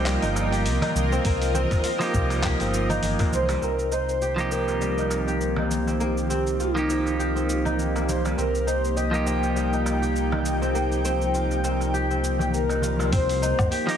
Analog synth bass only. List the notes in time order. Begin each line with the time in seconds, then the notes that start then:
Already playing: C2
0.23 G1
0.66 C2
0.95 C2
1.25 C2
1.71 G1
2.14 C2
2.61 G1
3.03 G1
3.33 C2
3.62 C2
8.38 C2
13.13 C2
13.59 G1